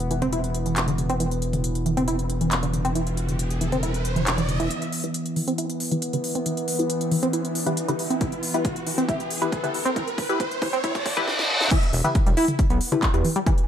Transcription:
Already playing: E1 E3 B3
0.00 closed hi-hat
0.11 E3, closed hi-hat
0.22 C4, closed hi-hat, mid tom
0.33 E4, closed hi-hat
0.44 closed hi-hat
0.55 closed hi-hat
0.66 E3, closed hi-hat
0.76 clap, closed hi-hat
0.88 D3, closed hi-hat
0.98 closed hi-hat, mid tom
1.10 C4, closed hi-hat
1.20 E3, closed hi-hat, riser
1.31 closed hi-hat
1.42 closed hi-hat
1.53 closed hi-hat, mid tom
1.64 closed hi-hat
1.75 closed hi-hat
1.86 E3, closed hi-hat
1.97 C4, closed hi-hat, mid tom
2.08 E4, closed hi-hat
2.19 closed hi-hat
2.30 closed hi-hat
2.41 E3, closed hi-hat
2.51 clap, closed hi-hat
2.63 D3, closed hi-hat
2.73 closed hi-hat, mid tom
2.85 C4, closed hi-hat
2.95 E3, closed hi-hat
3.07 closed hi-hat
3.17 closed hi-hat
3.29 closed hi-hat, mid tom
3.39 closed hi-hat
3.50 closed hi-hat
3.61 E3, closed hi-hat
3.72 C4, closed hi-hat, mid tom
3.83 E4, closed hi-hat
3.94 closed hi-hat
4.05 closed hi-hat
4.16 E3, closed hi-hat, mid tom
4.27 clap, closed hi-hat
4.38 E3, closed hi-hat
4.49 closed hi-hat, mid tom
4.60 E3, closed hi-hat
4.70 E3 B3, closed hi-hat, riser
4.82 closed hi-hat
4.92 open hi-hat
5.04 E4 G4 B4, closed hi-hat
5.14 closed hi-hat
5.26 closed hi-hat
5.36 E3, open hi-hat
5.48 C4, closed hi-hat
5.58 E4, closed hi-hat
5.70 closed hi-hat
5.80 open hi-hat
5.91 E3 E4 G4 B4, closed hi-hat
6.02 closed hi-hat
6.13 D3 E4 G4 B4, closed hi-hat
6.24 open hi-hat
6.35 C4, closed hi-hat
6.46 E3, closed hi-hat
6.57 closed hi-hat
6.68 open hi-hat
6.79 E4 G4 B4, closed hi-hat
6.90 closed hi-hat
7.01 closed hi-hat
7.11 E3, open hi-hat
7.23 C4, closed hi-hat
7.33 E4, closed hi-hat
7.45 closed hi-hat
7.55 open hi-hat
7.66 E3 E4 G4 B4, closed hi-hat
7.77 closed hi-hat
7.88 D3 E4 G4 B4, closed hi-hat
7.99 open hi-hat
8.10 C4, closed hi-hat
8.21 E3, kick, closed hi-hat
8.32 closed hi-hat
8.43 open hi-hat
8.54 E4 G4 B4, closed hi-hat
8.65 kick, closed hi-hat
8.76 closed hi-hat
8.87 E3, open hi-hat
8.98 C4, closed hi-hat
9.08 E4, kick, closed hi-hat
9.20 closed hi-hat
9.30 open hi-hat
9.42 E3 E4 G4 B4, closed hi-hat
9.52 kick, closed hi-hat
9.64 D3 E4 G4 B4, closed hi-hat
9.74 open hi-hat
9.85 C4, closed hi-hat
9.96 E3, kick, closed hi-hat
10.08 closed hi-hat
10.18 kick, open hi-hat
10.29 E4 G4 B4, closed hi-hat
10.40 kick, closed hi-hat
10.51 closed hi-hat
10.62 E3, kick, open hi-hat
10.73 C4, closed hi-hat
10.84 E4, kick, closed hi-hat, reverse cymbal
10.95 kick, closed hi-hat
11.06 kick, open hi-hat
11.17 E3 E4 G4 B4, kick, closed hi-hat
11.28 snare
11.39 snare
11.61 snare
11.71 E3, kick, closed hi-hat, crash
11.83 closed hi-hat
11.93 E1, open hi-hat
12.04 E4 G4 B4, closed hi-hat, mid tom
12.15 kick, closed hi-hat
12.26 E1 G3, closed hi-hat
12.37 E4, open hi-hat
12.48 closed hi-hat, mid tom
12.59 kick, closed hi-hat
12.70 B1 B3, closed hi-hat
12.81 open hi-hat
12.92 D3 E4 G4 B4, closed hi-hat, mid tom
13.03 kick, clap, closed hi-hat
13.14 E2 E4 G4 B4, closed hi-hat
13.25 E3, open hi-hat
13.36 G3, closed hi-hat
13.46 E3, kick, closed hi-hat
13.58 closed hi-hat

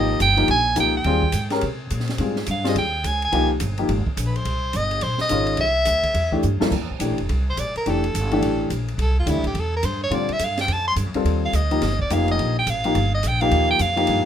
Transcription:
Already playing: G#1 F3 A#3 D#4 G4 D#5
0.20 G1 G5, hi-hat pedal, ride
0.37 F3 A#3 D#4 G4, ride
0.48 A#1 G#5, ride
0.76 C#2 F3 A#3 D#4 G4, hi-hat pedal, ride
0.80 G5
0.97 G5
1.04 D#2 G3 C4 F4 G#4, ride
1.22 kick
1.32 G#2, hi-hat pedal, ride
1.50 G#3 C#4 G4 A#4, snare, ride
1.61 C3, ride
1.90 A#2, hi-hat pedal, ride
2.00 snare
2.08 snare, ride
2.18 G#2 G3 C4 F4 G#4, ride
2.36 snare
2.46 G2, hi-hat pedal, ride
2.51 F5
2.64 G3 C4 F4 G#4, snare, ride
2.69 D#5
2.75 D#2 G5, ride
3.04 C#2 G#5, hi-hat pedal, ride
3.22 G#5, ride
3.32 C2 F3 A#3 D#4 G4, ride
3.60 G1, hi-hat pedal, ride
3.78 F3 A#3 D#4 G4, ride
3.89 G#1, ride
4.06 muted upright bass stroke, kick
4.17 A#1, hi-hat pedal, ride
4.27 B4
4.36 C5, ride
4.45 C2, ride
4.73 G1 D#5, hi-hat pedal, ride
4.91 ride
5.01 A#1 C5, ride
5.18 D#5, muted upright bass stroke, snare
5.29 G#1 D#3 G#3 C#4 F4, hi-hat pedal, ride
5.47 ride
5.57 C2 E5, ride
5.85 D2, hi-hat pedal, ride
6.03 kick, ride
6.14 E2, ride
6.32 E3 A3 D4 G4, kick
6.43 G2, hi-hat pedal
6.60 G2 F3 A#3 E4 A4, muted upright bass stroke, snare
6.72 F2, kick, crash
6.81 E2
6.90 C2
6.99 A#1 E3 A3 D4 G4, hi-hat pedal, ride
7.10 A1
7.18 F1, ride
7.29 C2, ride
7.50 C5
7.57 A1 D5, hi-hat pedal, ride
7.75 A#4, muted upright bass stroke, ride
7.86 F1 E3 A3 D4 G4 A4, ride
8.04 ride
8.14 G1, hi-hat pedal, ride
8.31 E3 A3 D4 G4, ride
8.42 A1, ride
8.70 A#1, hi-hat pedal, ride
8.88 ride
8.98 C2 A4, ride
9.19 F4
9.26 D2 E3 A3 D4 G4, hi-hat pedal, ride
9.30 E4
9.36 C2
9.44 A1 G4, kick, ride
9.54 E2, ride
9.60 A4
9.77 A#4
9.83 G2 C5, hi-hat pedal, ride
10.04 C#5
10.10 A2 D3 G3 C4 F4, ride
10.15 D5
10.29 muted upright bass stroke, ride
10.33 E5
10.39 G2, hi-hat pedal, ride
10.44 F5
10.57 G5, snare, ride
10.68 F2, ride
10.73 A5
10.88 C6
10.96 G2, hi-hat pedal, ride
11.06 F2
11.14 E2 G3 C4 F4 A4, ride
11.24 D#2, ride
11.45 F5
11.53 D2 D#5, hi-hat pedal, ride
11.71 F3 A#3 D#4 G4, ride
11.82 G1, snare, ride
11.99 D5, kick
12.10 F1 F3 A#3 D#4 G4 F5, hi-hat pedal, ride
12.28 D#5, ride
12.39 A#1, ride
12.59 G5
12.67 A1 F5, hi-hat pedal, ride
12.84 F3 A#3 D#4 G4, ride
12.95 G1, ride
13.15 D#5
13.23 A#1, hi-hat pedal, ride
13.28 G5
13.41 F3 A#3 D#4 G4 F5, ride
13.51 D#2, ride
13.71 G5
13.79 F2 F5, hi-hat pedal, ride
13.96 F3 A#3 D#4 G4, ride
14.07 G2, ride

